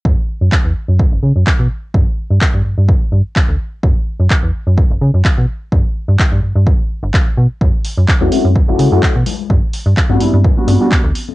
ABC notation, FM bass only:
X:1
M:4/4
L:1/16
Q:"Swing 16ths" 1/4=127
K:F#phr
V:1 name="FM bass" clef=bass
F,, z2 F,, z E,, z F,, z F,,, C, F,, z B,, z2 | G,, z2 G,, z G,, G,, G,, z2 G,, z2 D,, z2 | F,, z2 F,, z E,, z F,, z F,,, C, F,, z B,, z2 | G,, z2 G,, z G,, G,, G,, z3 G,,, z2 B,, z |
F,, z2 F,, z E,, z F,, z F,,, C, F,, z B,, z2 | G,, z2 G,, z G,, G,, G,, z2 G,, z2 D,, z2 |]